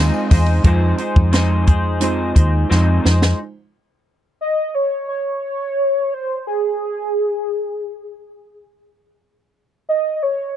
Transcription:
Already playing: synth keys G#3 C4 D#4 F4 C5 F5 G#5 A#5, analog synth pad G#3 D#4 F4, clean electric guitar C4 D#4 G#4 C5
0.14 synth keys D#5, tambourine
0.30 fingered electric bass E2, clean electric guitar D#4 G#4 C5, kick, open hi-hat, ride, tambourine
0.46 ride
0.63 fingered electric bass F2, clean electric guitar F3 C4 D#4 G#4 C5, synth keys G#3 D#4 F4 C5, kick, closed hi-hat
0.98 clean electric guitar D#4 G#4 C5, closed hi-hat
1.16 fingered electric bass F2, kick
1.32 clean electric guitar F3 C4 D#4 G#4 C5, snare, closed hi-hat
1.67 clean electric guitar D#4 G#4 C5, kick, closed hi-hat
2.00 synth keys G#3 D#4 F4 C5, clean electric guitar C4 D#4 G#4 C5, closed hi-hat
2.35 fingered electric bass D#2, clean electric guitar D#4 G#4 C5, kick, closed hi-hat
2.69 fingered electric bass F2, clean electric guitar F3 C4 D#4 G#4 C5, snare
3.03 fingered electric bass F2, clean electric guitar D#4 G#4 C5, snare
3.22 snare
4.41 soft synth lead D#5
4.75 soft synth lead C#5
5.08 soft synth lead C#5
6.14 soft synth lead C5
6.47 soft synth lead G#4
9.89 soft synth lead D#5
10.23 soft synth lead C#5

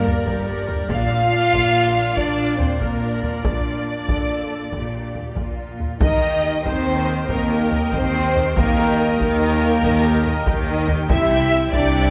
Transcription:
Already playing: double bass section G1, cello section G2, french horn section A#3, woodwind section D4 G4 A#4 D5, violin section A#4, flute section A#4
0.06 viola section A#4 D5, taiko low
0.26 double bass section G1, cello section G2, viola section G4 A#4, taiko
0.48 viola section A#4 D5
0.69 viola section G4 A#4, taiko low
0.89 double bass section A#1, cello section A#2, woodwind section A#3 D4 F4 D5, viola section D4 D5, french horn section F4, violin section F5, flute section F5, taiko
1.11 viola section F4 F5
1.32 viola section D4 D5
1.53 double bass section A#1, cello section A#2, viola section F4 F5, taiko
1.74 viola section D4 D5
1.95 viola section F4 F5
2.16 double bass section A#1, cello section A#2, viola section D4 D5, french horn section D4, violin section D5, flute section D5, taiko
2.38 viola section F4 F5
2.57 french horn section C4, viola section D4 D5, violin section C5, flute section C5, taiko low
2.78 double bass section A#1, cello section A#2, french horn section A#3, viola section F4 F5, violin section A#4, flute section A#4, taiko
3.02 viola section D4 D5
3.23 viola section F4 F5, taiko low
3.43 double bass section A#1, cello section A#2, french horn section D4, viola section D4 D5, violin section D5, flute section D5, taiko
3.65 viola section F4 F5
3.86 viola section D4 D5
4.08 double bass section A#1, cello section A#2, viola section A4, taiko
4.71 double bass section A#1, cello section A#2, viola section G4, taiko
5.15 taiko low
5.36 double bass section A#1, cello section A#2, viola section F4, taiko
5.80 taiko low
5.99 double bass section D#2, cello section D#3, french horn section D#4, woodwind section D#4 G4 A#4 G5, viola section A#4 D#5, violin section D#5, flute section D#5, taiko
6.22 viola section G4 G5
6.44 viola section A#4 D#5
6.65 double bass section D#2, cello section D#3, french horn section C4, viola section G4 G5, violin section C5, flute section C5, taiko
6.86 viola section A#4 D#5
7.09 viola section G4 G5
7.28 double bass section D#2, cello section D#3, french horn section A#3, violin section A#4, flute section A#4, viola section A#4 D#5, taiko
7.51 viola section G4 G5
7.72 viola section A#4 D#5, taiko low
7.92 double bass section D#2, cello section D#3, french horn section C4, viola section G4 G5, violin section C5, flute section C5, taiko
8.14 viola section A#4 D#5
8.35 viola section G4 G5, taiko low
8.55 double bass section D#2, cello section D#3, french horn section A#3, violin section A#4, viola section A#4 D#5, flute section A#4, taiko
8.78 viola section G4 G5
8.99 viola section A#4 D#5
9.19 double bass section D#2, cello section D#3, french horn section A#3, viola section G4 G5, flute section A#4, violin section A#4, taiko
9.41 viola section A#4 D#5
9.62 viola section G4 G5
9.83 double bass section D#2, cello section D#3, viola section A#4 D#5, taiko
10.04 viola section G4 G5
10.25 viola section A#4 D#5, taiko low
10.46 double bass section D#2, cello section D#3, viola section G4 G5, taiko
10.67 viola section A#4 D#5
10.88 viola section G4 G5, taiko low
11.09 double bass section C2, cello section C3, viola section E4 E5, french horn section E4, woodwind section E4 G4 C5 G5, flute section E5, violin section E5, taiko
11.31 viola section G4 G5
11.53 viola section E4 E5
11.72 double bass section C2, cello section C3, french horn section D4, viola section G4 G5, flute section D5, violin section D5, taiko
11.94 viola section E4 E5

